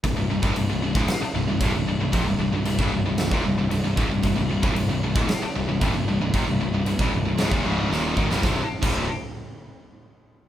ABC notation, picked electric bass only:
X:1
M:4/4
L:1/16
Q:1/4=114
K:Cm
V:1 name="Picked electric bass" clef=bass
C,,, C,,, C,,, C,,, C,,, C,,, C,,, _D,,, z2 C,,, C,,, C,,, C,,, C,,, C,,, | F,,, C,,, C,,, C,,, C,,, C,,, C,,, C,,, C,,, E,,, C,,, C,,, C,,, C,,, _D,,, C,,, | C,,, C,,, C,,, C,,, C,,, C,,, C,,, _D,,, z2 C,,, C,,, C,,, C,,, C,,, C,,, | F,,, C,,, C,,, C,,, C,,, C,,, C,,, C,,, _D,,, E,,, D,,,2 E,,,2 A,,, C,,, |
C,,, z2 C,,,2 z8 z3 |]